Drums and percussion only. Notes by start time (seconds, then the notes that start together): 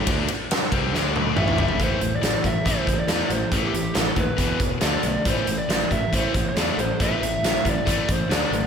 0.07 kick, ride
0.28 ride
0.51 snare, ride
0.72 kick, ride
0.95 snare
1.16 high tom
1.37 mid tom
1.48 mid tom
1.58 floor tom
1.68 floor tom
1.80 kick, closed hi-hat
2.01 closed hi-hat
2.23 snare, closed hi-hat
2.44 kick, closed hi-hat
2.66 kick, closed hi-hat
2.87 kick, closed hi-hat
3.08 snare, closed hi-hat
3.30 closed hi-hat
3.52 kick, closed hi-hat
3.74 closed hi-hat
3.95 snare, closed hi-hat
4.16 kick, closed hi-hat
4.38 kick, closed hi-hat
4.60 kick, closed hi-hat
4.81 snare, closed hi-hat
5.03 closed hi-hat
5.25 kick, closed hi-hat
5.47 closed hi-hat
5.70 snare, closed hi-hat
5.91 kick, closed hi-hat
6.13 kick, closed hi-hat
6.34 kick, closed hi-hat
6.56 snare, closed hi-hat
6.79 closed hi-hat
7.00 kick, closed hi-hat
7.23 closed hi-hat
7.44 snare, closed hi-hat
7.65 kick, closed hi-hat
7.87 kick, closed hi-hat
8.09 kick, closed hi-hat
8.31 snare, closed hi-hat
8.53 closed hi-hat